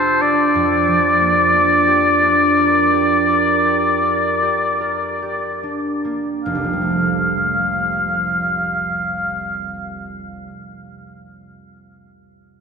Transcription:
Already playing: D4 F4 G4 C5
0.21 D4 D5
0.55 F2
0.88 F3
1.20 A#3
1.54 D4
1.87 G4
2.22 D4
2.57 A#4
2.92 G4
3.29 A#4
3.66 G4
4.04 A#4
4.42 G4
4.81 A#4
5.22 G4
5.63 D4
6.05 A#3
6.44 F1 F5
6.55 C2
6.64 F3
6.73 G3
6.82 A3
6.91 C4

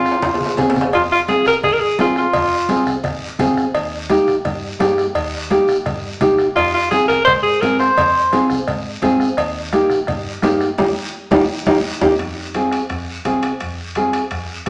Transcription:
Already playing: C4 F4 G#4
0.05 bombo rim, short guiro
0.11 high timbale
0.22 F1, bombo low, bombo rim, low conga, high timbale, long guiro
0.34 low timbale
0.40 G#1, low conga
0.46 low timbale
0.57 G1 C4 F4 G#4, bombo low, bombo rim, low conga, low timbale, short guiro
0.70 low timbale
0.75 F1, bombo rim, low conga, short guiro
0.81 low timbale
0.93 F1 F4, bombo low, bombo rim, cowbell, high conga, long guiro
1.12 F4
1.28 C4 F4 G#4, bombo rim, cowbell, high conga, short guiro
1.46 C2 A#4, bombo rim, short guiro
1.63 G#1 G#4, bombo low, bombo rim, cowbell, high conga, low conga, long guiro
1.72 A#4
1.79 G#4
1.98 G#1 C4 F4 G#4, bombo rim, cowbell, high conga, low timbale, short guiro
2.16 F4, bombo rim, short guiro
2.33 F1, bombo low, bombo rim, cowbell, high conga, low conga, long guiro
2.68 C4 F4 G#4, bombo rim, cowbell, high conga, short guiro
2.86 C2, bombo rim, short guiro
3.04 G#1, bombo low, bombo rim, cowbell, high conga, low conga, long guiro
3.39 G#1 C4 F4 G#4, bombo low, bombo rim, cowbell, high conga, low conga, short guiro
3.57 bombo rim, short guiro
3.75 D#2, bombo low, bombo rim, cowbell, high conga, long guiro
4.10 A#3 D#4 G4, bombo rim, cowbell, high conga, short guiro
4.27 A#1, bombo rim, short guiro
4.45 G2, bombo low, bombo rim, cowbell, high conga, low conga, long guiro
4.79 G2 A#3 D#4 G4, bombo rim, cowbell, high conga, low timbale, short guiro
4.98 bombo rim, short guiro
5.15 D#2, bombo low, bombo rim, cowbell, high conga, long guiro
5.50 A#3 D#4 G4, bombo rim, cowbell, high conga, short guiro
5.68 A#1, bombo rim, short guiro
5.85 G2, bombo low, bombo rim, cowbell, high conga, low conga, long guiro
6.21 C2 A#3 D#4 G4, bombo low, bombo rim, cowbell, high conga, low conga, short guiro
6.38 bombo rim, short guiro
6.56 F2 F4, bombo low, bombo rim, cowbell, high conga, long guiro
6.74 F4
6.91 C4 F4 G#4, bombo rim, cowbell, high conga, short guiro
7.08 C2 A#4, bombo rim, short guiro
7.25 G#2 C5, bombo low, bombo rim, cowbell, high conga, low conga, long guiro
7.43 G#4
7.61 G#2 C4 F4 G#4 A#4, bombo rim, cowbell, high conga, short guiro
7.79 C5, bombo rim, short guiro
7.97 F2, bombo low, bombo rim, cowbell, high conga, low conga, long guiro
8.32 C4 F4 G#4, bombo rim, cowbell, high conga, short guiro
8.50 C2, bombo rim, short guiro
8.67 G#2, bombo low, bombo rim, cowbell, high conga, low conga, long guiro
9.02 G#2 C4 F4 G#4, bombo low, bombo rim, cowbell, high conga, short guiro
9.20 bombo rim, short guiro
9.37 D#2, bombo low, bombo rim, cowbell, high conga, long guiro
9.73 A#3 D#4 G4, bombo rim, cowbell, high conga, short guiro
9.90 A#1, bombo rim, short guiro
10.07 G2, bombo low, bombo rim, cowbell, high conga, low conga, long guiro
10.42 G2 A#3 D#4 G4, bombo rim, cowbell, high conga, low timbale, short guiro
10.60 bombo rim, short guiro
10.78 D#2 A#3 D#4 G4, bombo low, high conga, high timbale, long guiro
11.31 D#2 A#3 D#4 G4, bombo low, high conga, high timbale, long guiro
11.66 D#2 A#3 D#4 G4, bombo low, high conga, high timbale, long guiro
12.01 D#2 A#3 D#4 G4, bombo low, high conga, high timbale, long guiro
12.19 F2, bombo low, bombo rim, high conga, high timbale, long guiro
12.54 C4 F4 G#4, bombo rim, high conga, high timbale, short guiro
12.71 bombo rim, high timbale, short guiro
12.89 F2, bombo low, bombo rim, high conga, high timbale, long guiro
13.25 C2 C4 F4 G#4, bombo rim, high conga, high timbale, short guiro
13.42 bombo rim, high timbale, short guiro
13.60 F2, bombo low, bombo rim, high conga, high timbale, long guiro
13.95 C4 F4 G#4, bombo rim, high conga, high timbale, short guiro
14.13 bombo rim, high timbale, short guiro
14.31 F2, bombo low, bombo rim, high conga, high timbale, long guiro
14.66 bombo rim

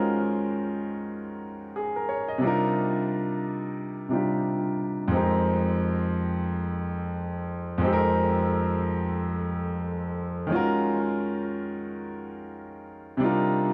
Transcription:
Already playing: D#3 G#3 C#4 F4 F#4 A#4 C5
1.76 G#4
1.96 A#4
2.09 C#5
2.28 D#5
2.38 C3 G3 D4
2.44 D#4 F4 A#4
4.09 C3 G3 D4 D#4 F4
4.13 G4
5.08 F2 G#3 C4
5.13 D#4 G4 A#4
7.78 F2 G#3 C4
7.83 D#4 G4 A4
7.93 A#4
10.47 D#3 G#3 C#4
10.52 F4 F#4 A#4
13.17 C3 G3 D4
13.22 D#4 F4 A#4

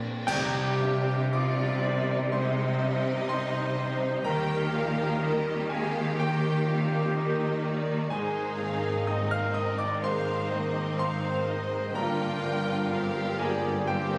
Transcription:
Already playing: F2 F3 C4 D4 A#4
0.26 C2 C3 D#3 G3 D#4 G4 C5 G5, concert bass drum, crash
0.31 C2
0.79 G2 C4 D4
1.32 G3 C4 D#4 F4 D5 D6
1.84 D#4 C5
2.31 C2 G#3 C4 D#4 C5 D#5 C6
2.81 G2 G3
3.28 D#4 C5 C6
3.77 D#4 C5
4.24 D#2 D#3 G3 A#3 G4 A#4 G5 A#5
4.73 A#2 F3 D#4 F5
5.22 G3 C4 D#4 G4 A#4 D#5
5.69 G#3 D#4 G#4 A#4 F5 G#5
6.19 D#2 A#3 G4 G5
6.67 A#2 C4 D#4 F5
7.16 A#3 D#4 A#4 D#5
7.63 A#3 D#4 A#4 D5
8.10 G#1 G#2 D#3 G#3 D#4 G#4 A#4 C5 G#5
8.57 D#3 A#3 C4 F5
9.07 C4 D#4 C5 D#5 D#6
9.31 F5 F6
9.54 A#3 A#4 D#5 D#6
9.77 D5 D6
10.00 G#2 G#3 C4 C5 F5 C6
10.05 D#3
10.49 D#3 A#3 D#5
10.97 C4 D#4 C5 F5 C6
11.46 G#3 A#4 D#5
11.93 G1 G2 D3 A#3 D4 F4 A#4 G5 A#5
12.42 D3 F3 A#3
12.88 F3 C4 F4 F5 D6
12.93 G4
13.37 A#3 G#4 A#4 D5 G#5
13.83 G2 D3 A#3 C4 G4 C5 G5

